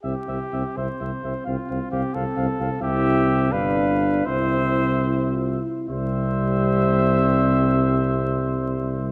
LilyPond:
<<
  \new Staff \with { instrumentName = "Cornet" } { \time 6/8 \key c \major \tempo 4. = 76 e''8 e''8 e''8 e''8 e''8 e''8 | f''8 f''8 f''8 f''8 f''8 f''8 | e''4. f''4. | e''2~ e''8 r8 |
e''2.~ | e''2. | }
  \new Staff \with { instrumentName = "Trumpet" } { \time 6/8 \key c \major g'4. c''4. | f'4 g'8 a'4. | g'4. b'4. | c''2~ c''8 r8 |
c''2.~ | c''2. | }
  \new Staff \with { instrumentName = "French horn" } { \time 6/8 \key c \major r4. c'4.~ | c'2. | e'4. d'4. | e'4. e'8 f'8 e'8 |
c'2.~ | c'2. | }
  \new Staff \with { instrumentName = "Euphonium" } { \time 6/8 \key c \major c'8 c'8 c'8 c'8 c'8 c'8 | c'8 c'8 c'8 c'8 c'8 c'8 | c'4. d'4. | c'2~ c'8 r8 |
g2.~ | g2. | }
  \new Staff \with { instrumentName = "Tuba" } { \clef bass \time 6/8 \key c \major c,8 c,8 c,8 c,8 c,8 c,8 | c,8 c,8 c,8 c,8 c,8 c,8 | c,4. g,,4. | c,2~ c,8 r8 |
c,2.~ | c,2. | }
>>